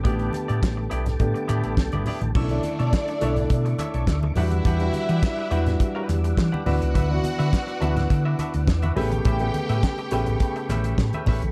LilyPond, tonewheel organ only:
\new Staff \with { instrumentName = "Tonewheel organ" } { \time 4/4 \key a \mixolydian \tempo 4 = 104 << { <a' a'' d'''>1 | <a' cis''' d'''>2.~ <a' cis''' d'''>8 <g e'''>8~ | <g e'''>2.~ <g e'''>8 <b' e'''>8~ | <b' e'''>2.~ <b' e'''>8 <a' b'' cis'''>8~ |
<a' b'' cis'''>1 | } \\ { g''1 | e''2.~ e''8 fis''8~ | fis''1~ | fis''2.~ fis''8 g''8~ |
g''1 | } >> }